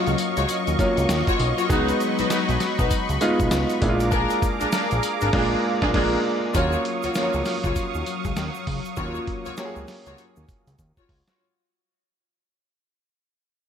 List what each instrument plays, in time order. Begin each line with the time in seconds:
Already playing: grand piano F#3 A#3 C#4 F4, analog synth pad F#3 D#5 F5 C#6
0.07 analog synth bass C#2, closed hi-hat, shaker
0.18 closed hi-hat, tambourine, shaker
0.36 analog synth bass C#2, string section F4 F#4 C#5, closed hi-hat, shaker
0.49 closed hi-hat, tambourine, shaker
0.67 analog synth bass D#2, closed hi-hat, shaker
0.79 grand piano F#3 A#3 C#4 F4, kick, closed hi-hat, tambourine, shaker
0.97 analog synth bass C#2, closed hi-hat, shaker
1.09 analog synth bass D#2, snare, closed hi-hat, tambourine, shaker
1.27 string section F4 F#4 C#5, kick, closed hi-hat, shaker
1.39 analog synth bass B1, closed hi-hat, tambourine
1.58 string section F4 F#4 C#5, closed hi-hat, shaker
1.69 analog synth bass C#2, analog synth pad F#3 B5, grand piano G#3 B3 D#4 F#4, string section D#4 F#4 B4, kick, closed hi-hat, tambourine, shaker
1.88 closed hi-hat, shaker
2.00 closed hi-hat, shaker
2.18 analog synth bass B1, string section D#4 F#4 B4, closed hi-hat, shaker
2.30 string section D#4 F#4 B4, snare, closed hi-hat, tambourine, shaker
2.49 analog synth bass B1, closed hi-hat, shaker
2.60 snare, closed hi-hat, tambourine, shaker
2.78 analog synth bass B1, string section D#4 F#4 B4, kick, closed hi-hat, shaker
2.91 kick, closed hi-hat, tambourine, shaker
3.09 analog synth bass C#2, closed hi-hat, shaker
3.21 grand piano G#3 B3 D#4 F4, closed hi-hat, tambourine, shaker
3.40 analog synth bass B1, kick, closed hi-hat, shaker
3.51 analog synth bass C#2, snare, closed hi-hat, tambourine, shaker
3.70 closed hi-hat, shaker
3.81 analog synth bass A#1, grand piano G#3 A#3 D4 E4, analog synth pad G#4 F5 A#5 D6, kick, closed hi-hat, tambourine
3.89 grand piano F4
4.00 closed hi-hat, shaker
4.11 string section D4 G#4 A#4, kick, closed hi-hat, tambourine, shaker
4.30 closed hi-hat, shaker
4.42 kick, closed hi-hat, shaker
4.60 analog synth bass A#1, string section D4 G#4 A#4, closed hi-hat, shaker
4.72 string section D4 G#4 A#4, snare, closed hi-hat, tambourine, shaker
4.91 analog synth bass A#1, closed hi-hat, shaker
5.03 closed hi-hat, tambourine, shaker
5.21 analog synth bass G#1, string section D4 G#4 A#4, closed hi-hat, shaker
5.33 analog synth bass A#1, grand piano G#3 A#3 D4 F4, string section D4 G#4 A#4, kick, snare, crash
5.82 analog synth bass A#1, grand piano G#3 A#3 D4 F4, string section D4 G#4 A#4, kick, snare
5.93 analog synth bass A#1, grand piano G#3 A#3 D4 F4, string section D4 G#4 A#4, kick, snare, crash
6.54 analog synth bass D#2, analog synth pad F#3 F5 C#6 D#6, grand piano F#3 A#3 C#4 F4, string section F4 F#4 C#5, kick, closed hi-hat, tambourine, shaker
6.72 shaker
6.85 closed hi-hat
7.03 analog synth bass C#2, string section F4 F#4 C#5, closed hi-hat, shaker
7.14 grand piano F3 A#3 C#4 F4, string section F4 F#4 C#5, snare, closed hi-hat, tambourine, shaker
7.22 grand piano F#3
7.33 analog synth bass C#2, shaker
7.45 snare, open hi-hat, tambourine, shaker
7.63 analog synth bass C#2, string section F4 F#4 C#5, kick, closed hi-hat, shaker
7.76 kick, closed hi-hat, tambourine, shaker
7.94 analog synth bass D#2, shaker
8.06 closed hi-hat, tambourine, shaker
8.25 analog synth bass C#2, kick, closed hi-hat, shaker
8.36 analog synth bass D#2, snare, closed hi-hat, tambourine, shaker
8.54 shaker
8.67 analog synth bass C#2, kick, open hi-hat, tambourine
8.85 closed hi-hat, shaker
8.97 analog synth bass D#2, grand piano F#3 A#3 C#4 F4, string section F4 F#4 C#5, kick, closed hi-hat, shaker
9.15 shaker
9.27 kick, closed hi-hat
9.45 analog synth bass C#2, string section F4 F#4 C#5, closed hi-hat, shaker
9.57 grand piano F#3 A#3 C#4 G4, string section F4 F#4 C#5, snare, closed hi-hat, shaker
9.65 grand piano G#4
9.76 analog synth bass C#2, shaker
9.88 snare, open hi-hat, shaker
10.06 analog synth bass C#2, string section F4 F#4 C#5, closed hi-hat, shaker
10.18 closed hi-hat, shaker
10.36 analog synth bass D#2, shaker
10.48 kick, closed hi-hat, shaker
10.67 analog synth bass C#2, closed hi-hat, shaker
10.79 analog synth bass D#2, kick, closed hi-hat, shaker
10.97 string section F4 F#4 C#5, kick, shaker
11.09 analog synth bass C#2, kick, open hi-hat
11.27 string section F4 F#4 C#5, snare, closed hi-hat, shaker